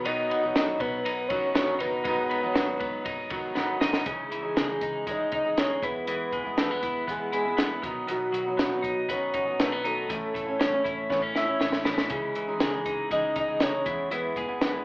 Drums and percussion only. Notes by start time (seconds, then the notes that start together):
0.05 ride
0.31 ride
0.56 snare, ride
0.80 kick, ride
1.06 ride
1.30 kick, ride
1.55 snare, ride
1.80 ride
2.05 kick, ride
2.31 ride
2.55 snare, ride
2.80 kick, ride
3.06 kick, ride
3.30 kick, ride
3.57 snare
3.81 snare
3.93 snare
4.06 kick, closed hi-hat
4.32 closed hi-hat
4.57 snare, closed hi-hat
4.81 kick, closed hi-hat
5.07 kick, closed hi-hat
5.32 kick, closed hi-hat
5.58 snare, closed hi-hat
5.83 kick, closed hi-hat
6.07 closed hi-hat
6.33 kick, closed hi-hat
6.58 snare, closed hi-hat
6.83 kick, closed hi-hat
7.08 kick, closed hi-hat
7.33 closed hi-hat
7.58 snare, closed hi-hat
7.83 kick, closed hi-hat
8.08 closed hi-hat
8.34 closed hi-hat
8.59 snare, closed hi-hat
8.84 kick, closed hi-hat
9.09 kick, closed hi-hat
9.34 kick, closed hi-hat
9.60 snare, closed hi-hat
9.85 closed hi-hat
10.10 kick, closed hi-hat
10.35 kick, closed hi-hat
10.61 snare, closed hi-hat
10.85 kick, closed hi-hat
11.10 kick, snare
11.36 snare
11.61 snare
11.73 snare
11.85 snare
11.98 snare
12.10 kick, closed hi-hat
12.35 closed hi-hat
12.60 snare, closed hi-hat
12.86 kick, closed hi-hat
13.11 kick, closed hi-hat
13.36 kick, closed hi-hat
13.60 snare, closed hi-hat
13.86 kick, closed hi-hat
14.11 closed hi-hat
14.36 kick, closed hi-hat
14.61 snare, closed hi-hat